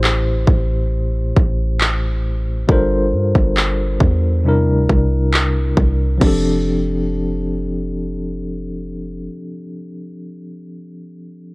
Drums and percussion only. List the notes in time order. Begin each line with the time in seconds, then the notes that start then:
0.04 clap
0.48 kick
1.36 kick
1.81 clap
2.69 kick
3.35 kick
3.57 clap
4.00 kick
4.89 kick
5.34 clap
5.77 kick
6.22 kick, crash